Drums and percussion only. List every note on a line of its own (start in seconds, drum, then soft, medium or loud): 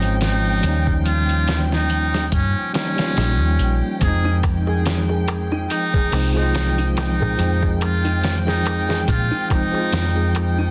0.02 closed hi-hat soft
0.21 snare medium
0.21 closed hi-hat medium
0.63 closed hi-hat medium
0.87 kick medium
1.06 closed hi-hat medium
1.29 closed hi-hat soft
1.48 snare loud
1.48 closed hi-hat medium
1.72 snare medium
1.90 closed hi-hat medium
2.14 snare soft
2.32 kick loud
2.32 closed hi-hat medium
2.74 snare loud
2.74 closed hi-hat medium
2.98 snare loud
2.98 closed hi-hat medium
3.17 snare loud
3.17 closed hi-hat medium
3.59 closed hi-hat medium
4.01 kick loud
4.01 closed hi-hat medium
4.01 darbuka tek medium
4.25 darbuka tek soft
4.43 kick medium
4.43 closed hi-hat medium
4.43 darbuka tek medium
4.67 darbuka tek soft
4.86 snare loud
4.86 closed hi-hat medium
4.86 darbuka tek medium
5.09 darbuka tek soft
5.28 closed hi-hat medium
5.28 darbuka tek medium
5.52 darbuka tek soft
5.70 closed hi-hat medium
5.70 darbuka tek medium
5.94 kick loud
6.12 open hi-hat medium
6.12 darbuka tek medium
6.37 darbuka tek soft
6.55 snare loud
6.55 closed hi-hat medium
6.55 darbuka tek medium
6.78 closed hi-hat soft
6.97 snare medium
6.97 closed hi-hat medium
6.97 darbuka tek loud
7.22 darbuka tek soft
7.22 darbuka dum medium
7.39 closed hi-hat medium
7.39 darbuka tek medium
7.63 kick medium
7.63 darbuka tek soft
7.81 closed hi-hat medium
7.81 darbuka tek loud
8.05 closed hi-hat soft
8.05 darbuka tek soft
8.24 snare loud
8.24 closed hi-hat medium
8.24 darbuka tek medium
8.47 snare medium
8.47 darbuka tek soft
8.66 closed hi-hat medium
8.66 darbuka tek medium
8.90 snare soft
8.90 darbuka tek soft
9.08 kick loud
9.08 closed hi-hat medium
9.08 darbuka tek medium
9.50 kick medium
9.50 closed hi-hat medium
9.50 darbuka tek medium
9.74 darbuka tek soft
9.93 snare loud
9.93 closed hi-hat medium
9.93 darbuka tek medium
10.35 closed hi-hat medium
10.35 darbuka tek medium
10.60 darbuka tek soft